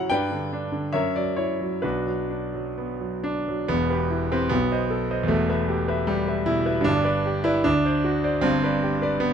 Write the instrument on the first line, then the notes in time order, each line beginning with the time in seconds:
grand piano
Already playing: F#2 F#3 E4 F#4 A#4 C#5 E5 F#5 A#5
0.10 G2 B4 D5 G5
0.32 D3
0.53 D4
0.72 D3
0.93 F#2 A#4 C#5 E5
1.16 F#3 D5
1.37 E4 C#5
1.61 F#3
1.82 B1 D4 F#4 B4
2.07 F#3
2.30 D4
2.54 F#3
2.78 B3
3.01 F#3
3.24 D4
3.48 F#3
3.68 E1 E2 B3
3.90 G4 B4
4.10 E4
4.32 C4 G4 B4
4.49 B1 B3
4.72 C5 D#5
4.90 A4
5.11 C5 D#5
5.23 E2
5.28 E1 A3
5.49 B4 E5
5.68 G4
5.88 B4 E5
6.07 G3
6.28 B4 E5
6.46 B2 E4
6.66 B4 E5
6.81 G1 G2 D4
7.04 B4 D5
7.26 G4
7.44 E4 B4 D5
7.64 D2 D4
7.85 C5 D5
8.04 F#4
8.24 C5 D5
8.41 G1 G2 C4
8.64 B4 D5
8.83 G4
9.02 B4 D5
9.20 B3